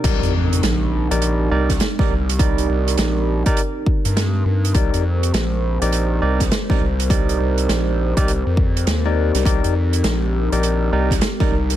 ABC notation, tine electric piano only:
X:1
M:4/4
L:1/16
Q:"Swing 16ths" 1/4=102
K:Cm
V:1 name="Tine electric piano"
[EGBd]2 z4 z [EGBd]3 [EGBd] z2 [EGBd] z2 | [EGBd]6- [EGBd] [EGBd] z8 | [EGBd]2 z4 z [EGBd]3 [EGBd] z2 [EGBd] z2 | [EGBd]6- [EGBd] [EGBd] z4 z [EGBd]3 |
[EGBd]2 z4 z [EGBd]3 [EGBd] z2 [EGBd] z2 |]